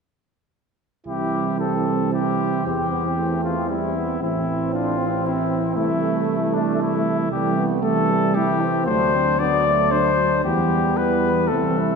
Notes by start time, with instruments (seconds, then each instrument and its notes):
1.06 tuba C2, french horn E3, trumpet C4 G4, trombone E4
1.60 trombone C4, trumpet A4
2.13 trombone E4, trumpet G4
2.65 tuba E2, trombone C4, trumpet G4
2.92 trombone B3
3.18 trombone A3
3.44 trumpet F4
3.69 trombone G3, trumpet E4
3.96 trombone B3
4.20 tuba A1, french horn E3, trombone C4, trumpet C4 E4
4.73 trombone D4, trumpet F4
4.98 trombone C4
5.25 trumpet E4
5.75 tuba C2, trombone A3, trumpet A3 E4
6.54 trumpet D4
6.82 trumpet E4
7.30 tuba C2, french horn E3, trombone G3, trumpet A3 G4
7.57 trombone B3
7.82 french horn E3, trumpet A3 A4, trombone A3
8.11 trombone G3
8.35 french horn E3, trumpet A3 G4, trombone E4
8.62 trombone C4
8.86 tuba D2, french horn F#3, trombone A3, trumpet D4 C5
9.14 trombone C4
9.39 french horn F#3, trombone B3, trumpet D4 D5
9.67 trombone A3
9.91 french horn F#3, trumpet D4 C5
10.44 tuba E2, french horn E3, trombone G3, trumpet B3 G4
10.97 french horn E3, trumpet B3 B4
11.48 tuba C2, french horn E3, trumpet A3 A4, trombone C4
11.78 trombone E4